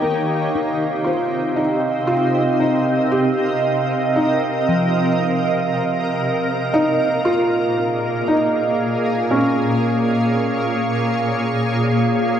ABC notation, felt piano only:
X:1
M:3/4
L:1/8
Q:1/4=58
K:Bbdor
V:1 name="Felt piano"
B,2 F E F E | G2 E3 z | z E F2 E2 | D4- D z |]